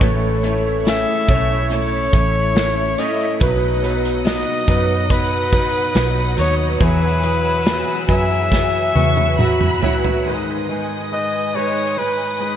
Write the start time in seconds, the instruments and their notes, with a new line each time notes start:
0.01 fingered electric bass A1, steel-string acoustic guitar A2 A4, grand piano A2 E3 A3 C#4 E4 C#5, string section E4 C#5, kick, closed hi-hat
0.43 grand piano A3 C#4 E4 C#5, closed hi-hat
0.85 grand piano A3 C#4 E4 G#4, steel-string acoustic guitar C#4 E4 A4, snare, closed hi-hat
0.90 flugelhorn E5
1.28 fingered electric bass B1, grand piano A3 C#4 E4 C#5, kick, closed hi-hat
1.70 grand piano A3 C#4 E4 C#5, steel-string acoustic guitar C#4 E4 A4, flugelhorn C#5, closed hi-hat
2.13 fingered electric bass A1, grand piano A3 C#4 E4 C#5, kick, closed hi-hat
2.55 grand piano A3 C#4 E4 C#5, steel-string acoustic guitar E4, snare, closed hi-hat
2.98 grand piano A3 C#4 E4 C#5, flugelhorn D#5, closed hi-hat
3.21 closed hi-hat
3.40 fingered electric bass B1, steel-string acoustic guitar B2 B4, grand piano B2 F#3 B3 D#4 B4, string section B4 D#5 F#5 D#6, kick, closed hi-hat
3.83 grand piano F#3 B3 D#4 B4, closed hi-hat
4.05 closed hi-hat
4.25 grand piano F#3 B3 D#4 F#4, steel-string acoustic guitar B3 D#4 B4, flugelhorn D#5, snare, closed hi-hat
4.68 fingered electric bass F#2, grand piano F#3 B3 D#4 B4, kick, closed hi-hat
5.09 grand piano F#3 B3 D#4 B4, steel-string acoustic guitar B3 D#4 B4, flugelhorn B4, kick, closed hi-hat
5.52 grand piano F#3 B3 D#4 B4, kick, closed hi-hat
5.94 fingered electric bass B1, grand piano F#3 B3 D#4 B4, steel-string acoustic guitar D#4, snare, closed hi-hat
6.37 fingered electric bass D#2, grand piano F#3 B3 D#4 C#5, flugelhorn C#5, closed hi-hat
6.80 fingered electric bass E2, grand piano B2 F#3 B3 E4 G#4, steel-string acoustic guitar E3 G#4, flugelhorn B4, string section G#5 E6, kick, closed hi-hat
7.22 grand piano F#3 B3 E4 G#4, closed hi-hat
7.65 grand piano F#3 B3 E4 B4, steel-string acoustic guitar B3 F#4 G#4, snare, closed hi-hat
8.07 fingered electric bass F#2, grand piano F#3 B3 E4 G#4, flugelhorn E5, kick, closed hi-hat
8.52 grand piano F#3 B3 E4 G#4, steel-string acoustic guitar B3 F#4 G#4, kick, snare
8.94 fingered electric bass E2, grand piano F#3 B3 E4 B4, violin section C#6, high tom
9.17 high tom
9.38 grand piano F#3 B3 E4 F#4, steel-string acoustic guitar F#4, violin section B5, mid tom
9.61 mid tom
9.82 grand piano F#3 B3 E4 F#4, floor tom
10.04 floor tom
10.25 grand piano G#2 D#3 G#3 D#4 B4, string section B4 D#5 G#5 D#6
10.69 grand piano G#3 D#4 G#4
11.11 grand piano G#3 D#4 B4, flugelhorn D#5
11.54 grand piano G#3 D#4 B4, flugelhorn C#5
11.97 grand piano G#3 D#4 B4, flugelhorn B4
12.40 grand piano G#3 D#4 B4